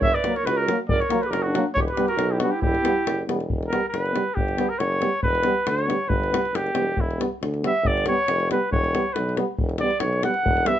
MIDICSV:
0, 0, Header, 1, 7, 480
1, 0, Start_track
1, 0, Tempo, 434468
1, 11, Time_signature, 2, 2, 24, 8
1, 11926, End_track
2, 0, Start_track
2, 0, Title_t, "Flugelhorn"
2, 0, Program_c, 0, 56
2, 41, Note_on_c, 0, 76, 107
2, 162, Note_on_c, 0, 74, 88
2, 179, Note_off_c, 0, 76, 0
2, 400, Note_on_c, 0, 73, 87
2, 417, Note_off_c, 0, 74, 0
2, 506, Note_on_c, 0, 71, 102
2, 522, Note_off_c, 0, 73, 0
2, 631, Note_on_c, 0, 70, 85
2, 648, Note_off_c, 0, 71, 0
2, 865, Note_off_c, 0, 70, 0
2, 984, Note_on_c, 0, 74, 94
2, 1115, Note_on_c, 0, 73, 78
2, 1131, Note_off_c, 0, 74, 0
2, 1349, Note_on_c, 0, 71, 78
2, 1366, Note_off_c, 0, 73, 0
2, 1446, Note_on_c, 0, 70, 83
2, 1463, Note_off_c, 0, 71, 0
2, 1575, Note_on_c, 0, 66, 77
2, 1591, Note_off_c, 0, 70, 0
2, 1818, Note_off_c, 0, 66, 0
2, 1923, Note_on_c, 0, 73, 108
2, 1982, Note_off_c, 0, 73, 0
2, 2075, Note_on_c, 0, 71, 72
2, 2289, Note_off_c, 0, 71, 0
2, 2295, Note_on_c, 0, 70, 84
2, 2556, Note_on_c, 0, 67, 72
2, 2572, Note_off_c, 0, 70, 0
2, 2649, Note_on_c, 0, 66, 78
2, 2665, Note_off_c, 0, 67, 0
2, 2773, Note_on_c, 0, 67, 69
2, 2789, Note_off_c, 0, 66, 0
2, 2889, Note_off_c, 0, 67, 0
2, 2896, Note_on_c, 0, 67, 95
2, 3574, Note_off_c, 0, 67, 0
2, 4065, Note_on_c, 0, 70, 83
2, 4290, Note_off_c, 0, 70, 0
2, 4297, Note_on_c, 0, 70, 80
2, 4419, Note_off_c, 0, 70, 0
2, 4419, Note_on_c, 0, 71, 80
2, 4805, Note_on_c, 0, 67, 77
2, 4821, Note_off_c, 0, 71, 0
2, 5185, Note_on_c, 0, 70, 78
2, 5202, Note_off_c, 0, 67, 0
2, 5290, Note_on_c, 0, 73, 93
2, 5306, Note_off_c, 0, 70, 0
2, 5771, Note_off_c, 0, 73, 0
2, 5777, Note_on_c, 0, 71, 95
2, 6279, Note_on_c, 0, 73, 82
2, 6296, Note_off_c, 0, 71, 0
2, 6727, Note_on_c, 0, 71, 87
2, 6743, Note_off_c, 0, 73, 0
2, 7247, Note_on_c, 0, 67, 83
2, 7263, Note_off_c, 0, 71, 0
2, 7740, Note_on_c, 0, 64, 66
2, 7757, Note_off_c, 0, 67, 0
2, 7962, Note_off_c, 0, 64, 0
2, 8476, Note_on_c, 0, 76, 101
2, 8694, Note_on_c, 0, 74, 93
2, 8711, Note_off_c, 0, 76, 0
2, 8918, Note_off_c, 0, 74, 0
2, 8923, Note_on_c, 0, 73, 103
2, 9359, Note_off_c, 0, 73, 0
2, 9405, Note_on_c, 0, 71, 82
2, 9617, Note_off_c, 0, 71, 0
2, 9635, Note_on_c, 0, 73, 92
2, 10090, Note_on_c, 0, 71, 74
2, 10106, Note_off_c, 0, 73, 0
2, 10334, Note_off_c, 0, 71, 0
2, 10826, Note_on_c, 0, 74, 98
2, 11044, Note_on_c, 0, 73, 84
2, 11061, Note_off_c, 0, 74, 0
2, 11313, Note_on_c, 0, 78, 97
2, 11330, Note_off_c, 0, 73, 0
2, 11789, Note_on_c, 0, 76, 104
2, 11805, Note_off_c, 0, 78, 0
2, 11926, Note_off_c, 0, 76, 0
2, 11926, End_track
3, 0, Start_track
3, 0, Title_t, "Clarinet"
3, 0, Program_c, 1, 71
3, 0, Note_on_c, 1, 73, 86
3, 141, Note_on_c, 1, 71, 74
3, 158, Note_off_c, 1, 73, 0
3, 378, Note_on_c, 1, 70, 74
3, 394, Note_off_c, 1, 71, 0
3, 527, Note_on_c, 1, 66, 69
3, 543, Note_off_c, 1, 70, 0
3, 665, Note_off_c, 1, 66, 0
3, 665, Note_on_c, 1, 66, 69
3, 883, Note_off_c, 1, 66, 0
3, 1001, Note_on_c, 1, 70, 74
3, 1136, Note_off_c, 1, 70, 0
3, 1136, Note_on_c, 1, 70, 67
3, 1396, Note_on_c, 1, 67, 61
3, 1412, Note_off_c, 1, 70, 0
3, 1485, Note_on_c, 1, 66, 71
3, 1502, Note_off_c, 1, 67, 0
3, 1628, Note_on_c, 1, 62, 65
3, 1644, Note_off_c, 1, 66, 0
3, 1845, Note_off_c, 1, 62, 0
3, 1989, Note_on_c, 1, 67, 73
3, 2034, Note_off_c, 1, 67, 0
3, 2122, Note_on_c, 1, 67, 66
3, 2316, Note_off_c, 1, 67, 0
3, 2322, Note_on_c, 1, 66, 72
3, 2570, Note_on_c, 1, 64, 56
3, 2587, Note_off_c, 1, 66, 0
3, 2682, Note_on_c, 1, 62, 67
3, 2699, Note_off_c, 1, 64, 0
3, 2820, Note_on_c, 1, 64, 65
3, 2836, Note_off_c, 1, 62, 0
3, 2917, Note_off_c, 1, 64, 0
3, 2942, Note_on_c, 1, 64, 73
3, 3598, Note_off_c, 1, 64, 0
3, 11926, End_track
4, 0, Start_track
4, 0, Title_t, "Euphonium"
4, 0, Program_c, 2, 58
4, 286, Note_on_c, 2, 58, 57
4, 375, Note_off_c, 2, 58, 0
4, 776, Note_on_c, 2, 58, 57
4, 864, Note_off_c, 2, 58, 0
4, 1214, Note_on_c, 2, 58, 74
4, 1311, Note_off_c, 2, 58, 0
4, 1723, Note_on_c, 2, 58, 62
4, 1814, Note_off_c, 2, 58, 0
4, 2188, Note_on_c, 2, 59, 68
4, 2283, Note_off_c, 2, 59, 0
4, 2670, Note_on_c, 2, 59, 61
4, 2764, Note_off_c, 2, 59, 0
4, 3120, Note_on_c, 2, 59, 64
4, 3220, Note_off_c, 2, 59, 0
4, 3621, Note_on_c, 2, 59, 56
4, 3717, Note_off_c, 2, 59, 0
4, 4102, Note_on_c, 2, 59, 55
4, 4198, Note_off_c, 2, 59, 0
4, 4548, Note_on_c, 2, 59, 52
4, 4651, Note_off_c, 2, 59, 0
4, 5060, Note_on_c, 2, 59, 68
4, 5157, Note_off_c, 2, 59, 0
4, 5526, Note_on_c, 2, 59, 53
4, 5626, Note_off_c, 2, 59, 0
4, 6007, Note_on_c, 2, 59, 66
4, 6107, Note_off_c, 2, 59, 0
4, 6478, Note_on_c, 2, 59, 59
4, 6579, Note_off_c, 2, 59, 0
4, 6969, Note_on_c, 2, 59, 60
4, 7068, Note_off_c, 2, 59, 0
4, 7446, Note_on_c, 2, 59, 47
4, 7545, Note_off_c, 2, 59, 0
4, 7940, Note_on_c, 2, 59, 60
4, 8037, Note_off_c, 2, 59, 0
4, 8430, Note_on_c, 2, 59, 57
4, 8525, Note_off_c, 2, 59, 0
4, 8935, Note_on_c, 2, 59, 61
4, 9024, Note_off_c, 2, 59, 0
4, 9405, Note_on_c, 2, 59, 69
4, 9496, Note_off_c, 2, 59, 0
4, 9883, Note_on_c, 2, 59, 64
4, 9974, Note_off_c, 2, 59, 0
4, 10346, Note_on_c, 2, 59, 63
4, 10440, Note_off_c, 2, 59, 0
4, 10842, Note_on_c, 2, 59, 54
4, 10932, Note_off_c, 2, 59, 0
4, 11316, Note_on_c, 2, 59, 50
4, 11407, Note_off_c, 2, 59, 0
4, 11788, Note_on_c, 2, 59, 57
4, 11880, Note_off_c, 2, 59, 0
4, 11926, End_track
5, 0, Start_track
5, 0, Title_t, "Euphonium"
5, 0, Program_c, 3, 58
5, 282, Note_on_c, 3, 54, 49
5, 372, Note_off_c, 3, 54, 0
5, 745, Note_on_c, 3, 54, 61
5, 839, Note_off_c, 3, 54, 0
5, 1243, Note_on_c, 3, 54, 57
5, 1334, Note_off_c, 3, 54, 0
5, 1718, Note_on_c, 3, 54, 68
5, 1810, Note_off_c, 3, 54, 0
5, 2182, Note_on_c, 3, 55, 64
5, 2278, Note_off_c, 3, 55, 0
5, 2683, Note_on_c, 3, 55, 55
5, 2774, Note_off_c, 3, 55, 0
5, 3154, Note_on_c, 3, 55, 52
5, 3247, Note_off_c, 3, 55, 0
5, 3621, Note_on_c, 3, 55, 46
5, 3717, Note_off_c, 3, 55, 0
5, 4127, Note_on_c, 3, 55, 54
5, 4218, Note_off_c, 3, 55, 0
5, 4587, Note_on_c, 3, 55, 56
5, 4682, Note_off_c, 3, 55, 0
5, 5069, Note_on_c, 3, 55, 58
5, 5164, Note_off_c, 3, 55, 0
5, 5539, Note_on_c, 3, 55, 55
5, 5636, Note_off_c, 3, 55, 0
5, 6025, Note_on_c, 3, 55, 61
5, 6120, Note_off_c, 3, 55, 0
5, 6510, Note_on_c, 3, 55, 54
5, 6605, Note_off_c, 3, 55, 0
5, 6989, Note_on_c, 3, 55, 50
5, 7084, Note_off_c, 3, 55, 0
5, 7461, Note_on_c, 3, 55, 44
5, 7558, Note_off_c, 3, 55, 0
5, 7939, Note_on_c, 3, 55, 44
5, 8036, Note_off_c, 3, 55, 0
5, 8435, Note_on_c, 3, 55, 54
5, 8528, Note_off_c, 3, 55, 0
5, 8910, Note_on_c, 3, 55, 64
5, 9004, Note_off_c, 3, 55, 0
5, 9409, Note_on_c, 3, 55, 60
5, 9499, Note_off_c, 3, 55, 0
5, 9890, Note_on_c, 3, 55, 60
5, 9980, Note_off_c, 3, 55, 0
5, 10353, Note_on_c, 3, 55, 49
5, 10445, Note_off_c, 3, 55, 0
5, 10849, Note_on_c, 3, 55, 51
5, 10938, Note_off_c, 3, 55, 0
5, 11302, Note_on_c, 3, 55, 48
5, 11396, Note_off_c, 3, 55, 0
5, 11768, Note_on_c, 3, 55, 50
5, 11864, Note_off_c, 3, 55, 0
5, 11926, End_track
6, 0, Start_track
6, 0, Title_t, "Tuba"
6, 0, Program_c, 4, 58
6, 1, Note_on_c, 4, 30, 89
6, 136, Note_off_c, 4, 30, 0
6, 489, Note_on_c, 4, 37, 82
6, 755, Note_off_c, 4, 37, 0
6, 967, Note_on_c, 4, 30, 89
6, 1102, Note_off_c, 4, 30, 0
6, 1429, Note_on_c, 4, 30, 86
6, 1701, Note_off_c, 4, 30, 0
6, 1942, Note_on_c, 4, 28, 78
6, 2073, Note_off_c, 4, 28, 0
6, 2395, Note_on_c, 4, 35, 90
6, 2666, Note_off_c, 4, 35, 0
6, 2893, Note_on_c, 4, 28, 89
6, 3027, Note_off_c, 4, 28, 0
6, 3388, Note_on_c, 4, 30, 65
6, 3601, Note_off_c, 4, 30, 0
6, 3628, Note_on_c, 4, 28, 70
6, 3841, Note_off_c, 4, 28, 0
6, 3872, Note_on_c, 4, 28, 74
6, 4133, Note_off_c, 4, 28, 0
6, 4342, Note_on_c, 4, 30, 80
6, 4606, Note_off_c, 4, 30, 0
6, 4826, Note_on_c, 4, 31, 77
6, 5089, Note_off_c, 4, 31, 0
6, 5297, Note_on_c, 4, 30, 88
6, 5563, Note_off_c, 4, 30, 0
6, 5774, Note_on_c, 4, 28, 75
6, 6041, Note_off_c, 4, 28, 0
6, 6263, Note_on_c, 4, 38, 80
6, 6527, Note_off_c, 4, 38, 0
6, 6718, Note_on_c, 4, 31, 80
6, 6989, Note_off_c, 4, 31, 0
6, 7203, Note_on_c, 4, 30, 67
6, 7428, Note_off_c, 4, 30, 0
6, 7449, Note_on_c, 4, 28, 70
6, 7672, Note_off_c, 4, 28, 0
6, 7693, Note_on_c, 4, 28, 73
6, 7960, Note_off_c, 4, 28, 0
6, 8192, Note_on_c, 4, 38, 75
6, 8453, Note_off_c, 4, 38, 0
6, 8647, Note_on_c, 4, 31, 77
6, 8915, Note_off_c, 4, 31, 0
6, 9134, Note_on_c, 4, 29, 79
6, 9400, Note_off_c, 4, 29, 0
6, 9623, Note_on_c, 4, 28, 87
6, 9886, Note_off_c, 4, 28, 0
6, 10113, Note_on_c, 4, 35, 91
6, 10372, Note_off_c, 4, 35, 0
6, 10602, Note_on_c, 4, 28, 80
6, 10858, Note_off_c, 4, 28, 0
6, 11064, Note_on_c, 4, 35, 83
6, 11324, Note_off_c, 4, 35, 0
6, 11532, Note_on_c, 4, 28, 90
6, 11795, Note_off_c, 4, 28, 0
6, 11926, End_track
7, 0, Start_track
7, 0, Title_t, "Davul"
7, 20, Note_on_c, 9, 43, 88
7, 130, Note_off_c, 9, 43, 0
7, 176, Note_on_c, 9, 37, 24
7, 265, Note_off_c, 9, 37, 0
7, 265, Note_on_c, 9, 37, 61
7, 376, Note_off_c, 9, 37, 0
7, 400, Note_on_c, 9, 37, 27
7, 510, Note_off_c, 9, 37, 0
7, 522, Note_on_c, 9, 37, 64
7, 633, Note_off_c, 9, 37, 0
7, 757, Note_on_c, 9, 37, 69
7, 867, Note_off_c, 9, 37, 0
7, 985, Note_on_c, 9, 43, 82
7, 1096, Note_off_c, 9, 43, 0
7, 1124, Note_on_c, 9, 37, 27
7, 1220, Note_off_c, 9, 37, 0
7, 1220, Note_on_c, 9, 37, 66
7, 1331, Note_off_c, 9, 37, 0
7, 1361, Note_on_c, 9, 37, 24
7, 1472, Note_off_c, 9, 37, 0
7, 1472, Note_on_c, 9, 37, 58
7, 1582, Note_off_c, 9, 37, 0
7, 1713, Note_on_c, 9, 37, 67
7, 1823, Note_off_c, 9, 37, 0
7, 1950, Note_on_c, 9, 43, 74
7, 2060, Note_off_c, 9, 43, 0
7, 2077, Note_on_c, 9, 37, 25
7, 2180, Note_off_c, 9, 37, 0
7, 2180, Note_on_c, 9, 37, 62
7, 2291, Note_off_c, 9, 37, 0
7, 2301, Note_on_c, 9, 37, 22
7, 2412, Note_off_c, 9, 37, 0
7, 2415, Note_on_c, 9, 37, 62
7, 2526, Note_off_c, 9, 37, 0
7, 2651, Note_on_c, 9, 37, 65
7, 2762, Note_off_c, 9, 37, 0
7, 2898, Note_on_c, 9, 43, 83
7, 3008, Note_off_c, 9, 43, 0
7, 3034, Note_on_c, 9, 37, 27
7, 3144, Note_off_c, 9, 37, 0
7, 3147, Note_on_c, 9, 37, 69
7, 3258, Note_off_c, 9, 37, 0
7, 3393, Note_on_c, 9, 37, 69
7, 3504, Note_off_c, 9, 37, 0
7, 3636, Note_on_c, 9, 37, 60
7, 3746, Note_off_c, 9, 37, 0
7, 3760, Note_on_c, 9, 37, 27
7, 3867, Note_on_c, 9, 43, 67
7, 3871, Note_off_c, 9, 37, 0
7, 3977, Note_off_c, 9, 43, 0
7, 4007, Note_on_c, 9, 37, 22
7, 4117, Note_off_c, 9, 37, 0
7, 4118, Note_on_c, 9, 37, 57
7, 4228, Note_off_c, 9, 37, 0
7, 4351, Note_on_c, 9, 37, 56
7, 4461, Note_off_c, 9, 37, 0
7, 4482, Note_on_c, 9, 37, 20
7, 4591, Note_off_c, 9, 37, 0
7, 4591, Note_on_c, 9, 37, 55
7, 4702, Note_off_c, 9, 37, 0
7, 4828, Note_on_c, 9, 43, 74
7, 4938, Note_off_c, 9, 43, 0
7, 4954, Note_on_c, 9, 37, 23
7, 5064, Note_off_c, 9, 37, 0
7, 5064, Note_on_c, 9, 37, 56
7, 5175, Note_off_c, 9, 37, 0
7, 5306, Note_on_c, 9, 37, 59
7, 5417, Note_off_c, 9, 37, 0
7, 5436, Note_on_c, 9, 37, 20
7, 5543, Note_off_c, 9, 37, 0
7, 5543, Note_on_c, 9, 37, 55
7, 5654, Note_off_c, 9, 37, 0
7, 5777, Note_on_c, 9, 43, 76
7, 5887, Note_off_c, 9, 43, 0
7, 5909, Note_on_c, 9, 37, 28
7, 6003, Note_off_c, 9, 37, 0
7, 6003, Note_on_c, 9, 37, 54
7, 6114, Note_off_c, 9, 37, 0
7, 6262, Note_on_c, 9, 37, 70
7, 6372, Note_off_c, 9, 37, 0
7, 6392, Note_on_c, 9, 37, 22
7, 6502, Note_off_c, 9, 37, 0
7, 6517, Note_on_c, 9, 37, 58
7, 6627, Note_off_c, 9, 37, 0
7, 6740, Note_on_c, 9, 43, 82
7, 6850, Note_off_c, 9, 43, 0
7, 6889, Note_on_c, 9, 37, 27
7, 6999, Note_off_c, 9, 37, 0
7, 7005, Note_on_c, 9, 37, 73
7, 7116, Note_off_c, 9, 37, 0
7, 7130, Note_on_c, 9, 37, 24
7, 7238, Note_off_c, 9, 37, 0
7, 7238, Note_on_c, 9, 37, 72
7, 7349, Note_off_c, 9, 37, 0
7, 7364, Note_on_c, 9, 37, 22
7, 7457, Note_off_c, 9, 37, 0
7, 7457, Note_on_c, 9, 37, 67
7, 7567, Note_off_c, 9, 37, 0
7, 7701, Note_on_c, 9, 43, 75
7, 7811, Note_off_c, 9, 43, 0
7, 7851, Note_on_c, 9, 37, 26
7, 7961, Note_off_c, 9, 37, 0
7, 7964, Note_on_c, 9, 37, 62
7, 8075, Note_off_c, 9, 37, 0
7, 8206, Note_on_c, 9, 37, 61
7, 8316, Note_off_c, 9, 37, 0
7, 8328, Note_on_c, 9, 37, 23
7, 8438, Note_off_c, 9, 37, 0
7, 8444, Note_on_c, 9, 37, 54
7, 8554, Note_off_c, 9, 37, 0
7, 8672, Note_on_c, 9, 43, 76
7, 8782, Note_off_c, 9, 43, 0
7, 8809, Note_on_c, 9, 37, 27
7, 8901, Note_off_c, 9, 37, 0
7, 8901, Note_on_c, 9, 37, 62
7, 9012, Note_off_c, 9, 37, 0
7, 9151, Note_on_c, 9, 37, 61
7, 9262, Note_off_c, 9, 37, 0
7, 9280, Note_on_c, 9, 37, 22
7, 9390, Note_off_c, 9, 37, 0
7, 9399, Note_on_c, 9, 37, 61
7, 9509, Note_off_c, 9, 37, 0
7, 9640, Note_on_c, 9, 43, 77
7, 9750, Note_off_c, 9, 43, 0
7, 9770, Note_on_c, 9, 37, 24
7, 9880, Note_off_c, 9, 37, 0
7, 9884, Note_on_c, 9, 37, 61
7, 9995, Note_off_c, 9, 37, 0
7, 10118, Note_on_c, 9, 37, 60
7, 10229, Note_off_c, 9, 37, 0
7, 10265, Note_on_c, 9, 37, 22
7, 10355, Note_off_c, 9, 37, 0
7, 10355, Note_on_c, 9, 37, 59
7, 10466, Note_off_c, 9, 37, 0
7, 10590, Note_on_c, 9, 43, 79
7, 10700, Note_off_c, 9, 43, 0
7, 10710, Note_on_c, 9, 37, 25
7, 10807, Note_off_c, 9, 37, 0
7, 10807, Note_on_c, 9, 37, 57
7, 10918, Note_off_c, 9, 37, 0
7, 10945, Note_on_c, 9, 37, 22
7, 11051, Note_off_c, 9, 37, 0
7, 11051, Note_on_c, 9, 37, 67
7, 11161, Note_off_c, 9, 37, 0
7, 11190, Note_on_c, 9, 37, 23
7, 11300, Note_off_c, 9, 37, 0
7, 11305, Note_on_c, 9, 37, 63
7, 11415, Note_off_c, 9, 37, 0
7, 11424, Note_on_c, 9, 37, 26
7, 11535, Note_off_c, 9, 37, 0
7, 11558, Note_on_c, 9, 43, 81
7, 11668, Note_off_c, 9, 43, 0
7, 11677, Note_on_c, 9, 37, 26
7, 11780, Note_off_c, 9, 37, 0
7, 11780, Note_on_c, 9, 37, 70
7, 11891, Note_off_c, 9, 37, 0
7, 11926, End_track
0, 0, End_of_file